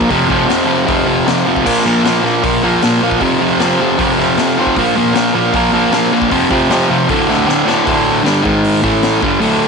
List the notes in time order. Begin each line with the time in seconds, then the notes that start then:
0.01 kick
0.10 F2 C3 F3, kick, open hi-hat
0.28 F2 C3 F3, kick
0.47 F2 C3 F3, snare, open hi-hat
0.66 F2 C3 F3
0.85 F2 C3 F3, kick, open hi-hat
1.04 F2 C3 F3
1.26 F2 C3 F3, snare, open hi-hat
1.45 F2 C3 F3
1.56 kick
1.64 A#2 F3 A#3, kick, crash
1.84 A#2 F3 A#3
2.04 A#2 F3 A#3, snare, open hi-hat
2.23 A#2 F3 A#3, snare
2.43 A#2 F3 A#3, kick, open hi-hat
2.63 A#2 F3 A#3
2.82 A#2 F3 A#3, snare, open hi-hat
3.02 A#2 F3 A#3
3.11 kick
3.20 F2 C3 F3, kick, open hi-hat
3.40 F2 C3 F3
3.59 F2 C3 F3, snare, open hi-hat
3.79 F2 C3 F3
3.98 F2 C3 F3, kick, open hi-hat
4.18 F2 C3 F3, snare
4.37 F2 C3 F3, snare, open hi-hat
4.58 F2 C3 F3
4.67 kick
4.77 A#2 F3 A#3, kick, open hi-hat
4.96 A#2 F3 A#3
5.14 A#2 F3 A#3, snare, open hi-hat
5.34 A#2 F3 A#3
5.53 A#2 F3 A#3, kick, open hi-hat
5.72 A#2 F3 A#3
5.92 A#2 F3 A#3, snare, open hi-hat
6.12 A#2 F3 A#3
6.22 kick
6.30 F2 C3 F3, kick, open hi-hat
6.49 F2 C3 F3, kick
6.70 F2 C3 F3, snare, open hi-hat
6.89 F2 C3 F3
7.09 D2 A2 D3, kick, open hi-hat
7.28 D2 A2 D3, snare
7.47 D2 A2 D3, snare
7.66 D2 A2 D3, snare
7.85 D2 A2 D3, kick, open hi-hat
8.23 G2 D3 G3, snare, open hi-hat
8.43 G#2 D#3 G#3, kick
8.64 open hi-hat
8.82 A2 E3 A3, kick
9.02 snare, open hi-hat
9.22 G2 D3 G3, kick
9.39 D2 A2 D3, open hi-hat